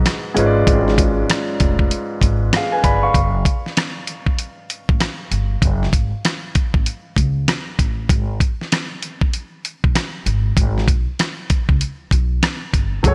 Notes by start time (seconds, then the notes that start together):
Already playing: G#2 G#3 F#4 B4 D#5
0.06 cross-stick, snare, closed hi-hat
0.34 G#1 G#2 G#3 C#4 F4 B4, closed hi-hat
0.39 C#5
0.46 D5
0.67 G#1, kick, closed hi-hat
0.88 snare
0.98 kick, closed hi-hat
1.30 cross-stick, snare, closed hi-hat
1.60 F1, kick, closed hi-hat
1.79 kick
1.91 closed hi-hat
2.21 G#1, kick, closed hi-hat
2.53 G#4 F5, cross-stick, snare, closed hi-hat
2.72 B4 G#5
2.84 G1 D5 B5, kick, closed hi-hat
3.03 F5 C#6
3.14 F#1, kick, closed hi-hat
3.45 kick, closed hi-hat
3.66 snare
3.77 cross-stick, snare, closed hi-hat
4.07 closed hi-hat
4.26 kick
4.39 closed hi-hat
4.70 closed hi-hat
4.89 A1, kick
5.00 cross-stick, snare, closed hi-hat
5.31 G1, closed hi-hat
5.62 F#1, kick, closed hi-hat
5.83 snare
5.93 G#1, kick, closed hi-hat
6.25 cross-stick, snare, closed hi-hat
6.55 kick, closed hi-hat
6.74 A1, kick
6.86 closed hi-hat
7.16 C#2, kick, closed hi-hat
7.48 cross-stick, snare, closed hi-hat
7.79 A1, kick, closed hi-hat
8.09 G#1, kick, closed hi-hat
8.40 kick, closed hi-hat
8.61 snare
8.72 cross-stick, snare, closed hi-hat
9.02 closed hi-hat
9.21 kick
9.33 closed hi-hat
9.65 closed hi-hat
9.84 B1, kick
9.95 cross-stick, snare, closed hi-hat
10.26 G#1, closed hi-hat
10.57 G#1, kick, closed hi-hat
10.78 snare
10.88 B1, kick, closed hi-hat
11.19 cross-stick, snare, closed hi-hat
11.50 kick, closed hi-hat
11.69 C#2, kick
11.81 closed hi-hat
12.11 B1, kick, closed hi-hat
12.43 cross-stick, snare, closed hi-hat
12.74 G1, kick, closed hi-hat
13.03 F#1 F#3 F#4 G#4 A4, kick, closed hi-hat
13.08 C#5